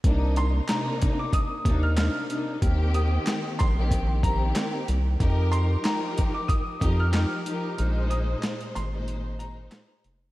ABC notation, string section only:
X:1
M:4/4
L:1/16
Q:"Swing 16ths" 1/4=93
K:Cm
V:1 name="String section"
[C,B,DE]4 [C,B,DE]4- [C,B,DE] z [C,B,DE]2 [C,B,DE]2 [C,B,DE]2 | [E,B,CG]6 z [E,B,CG]3 [E,B,CG]4- [E,B,CG] z | [F,EGB]4 [F,EGB]4- [F,EGB] z [F,EGB]2 [F,EGB]2 [F,EGB]2 | [B,,A,Ec]6 z [B,,A,Ec]3 [B,,A,Ec]4- [B,,A,Ec] z |]